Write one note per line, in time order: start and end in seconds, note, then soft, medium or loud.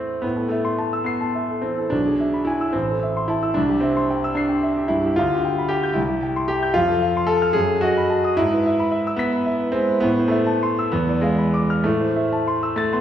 0.00 0.16 A2 medium
0.00 0.27 A3 medium
0.00 0.26 C4 medium
0.00 0.20 E4 soft
0.00 0.27 A4 medium
0.22 1.87 A2 medium
0.22 0.51 B3 medium
0.36 0.59 A4 soft
0.49 1.06 A3 medium
0.49 0.74 E5 soft
0.65 0.87 C6 soft
0.78 1.01 A5 soft
0.93 1.16 E6 soft
1.04 1.62 B3 medium
1.04 1.29 C7 soft
1.21 1.43 A5 soft
1.35 1.58 E5 soft
1.50 1.72 A4 soft
1.62 1.86 E3 soft
1.62 1.90 C4 medium
1.78 1.92 A4 soft
1.90 2.71 B1 medium
1.90 2.46 D4 medium
2.06 2.27 G#4 soft
2.20 2.41 E5 soft
2.33 2.55 B5 soft
2.45 2.73 E4 medium
2.45 2.68 G#5 soft
2.61 2.74 E6 soft
2.73 3.55 A1 medium
2.73 3.28 C4 medium
2.89 3.10 A4 soft
3.03 3.24 E5 soft
3.17 3.38 C6 soft
3.28 3.56 E4 medium
3.28 3.51 A5 soft
3.43 3.56 E6 soft
3.54 5.15 C2 medium
3.54 3.82 D4 medium
3.69 3.91 G4 soft
3.81 4.35 C4 medium
3.81 4.04 E5 soft
3.97 4.18 C6 soft
4.10 4.32 G5 medium
4.24 4.45 E6 medium
4.35 4.90 D4 medium
4.35 4.59 C7 soft
4.49 4.71 G5 soft
4.63 4.85 E5 soft
4.77 4.99 G4 soft
4.88 5.12 G2 soft
4.88 5.17 E4 medium
5.06 5.19 G4 soft
5.16 5.95 D2 medium
5.16 5.70 F4 loud
5.33 5.53 G4 soft
5.45 5.66 G5 soft
5.59 5.79 B5 medium
5.68 5.96 G4 medium
5.68 5.92 G5 medium
5.83 5.97 G6 medium
5.93 6.74 C2 medium
5.93 6.22 E4 medium
6.08 6.30 G4 soft
6.23 6.45 G5 soft
6.36 6.58 C6 medium
6.48 6.75 G4 medium
6.48 6.71 G5 medium
6.63 6.76 G6 medium
6.74 7.53 F2 medium
6.74 7.28 F4 loud
6.89 7.10 A4 medium
7.02 7.23 F5 soft
7.17 7.37 C6 medium
7.27 7.54 A4 loud
7.27 7.50 A5 medium
7.42 7.56 F6 medium
7.53 8.35 F#2 medium
7.53 7.82 G#4 loud
7.67 7.90 A4 soft
7.81 8.37 F#4 loud
7.81 8.05 D#5 medium
7.97 8.19 B5 medium
8.10 8.32 A5 medium
8.24 8.38 D#6 medium
8.37 10.00 G#2 medium
8.37 9.19 E4 loud
8.51 8.73 B4 medium
8.66 8.88 E5 medium
8.79 9.01 B5 medium
8.92 9.14 E5 medium
9.07 9.28 E6 medium
9.16 9.73 B3 loud
9.16 9.41 B6 medium
9.33 9.55 B5 medium
9.46 9.69 E5 medium
9.60 9.83 B4 medium
9.72 9.97 G#3 medium
9.72 10.02 C4 medium
9.88 10.03 B4 soft
10.00 10.89 A2 medium
10.00 10.31 B3 loud
10.19 10.42 C5 medium
10.28 10.89 A3 medium
10.28 10.55 E5 medium
10.47 10.70 A5 medium
10.63 10.86 C6 medium
10.79 10.93 E6 medium
10.92 11.82 E2 medium
10.92 11.22 B3 medium
11.09 11.32 D5 soft
11.21 11.83 G#3 medium
11.21 11.47 F5 medium
11.38 11.62 B5 medium
11.54 11.78 D6 medium
11.70 11.85 F6 medium
11.84 13.01 A2 medium
11.84 12.74 A3 medium
12.01 12.25 C5 soft
12.16 12.41 E5 soft
12.33 12.57 A5 soft
12.48 12.72 C6 medium
12.63 12.88 E6 medium
12.76 12.93 A3 medium
12.76 13.01 A6 medium
12.93 13.01 B3 medium
12.93 13.01 C6 soft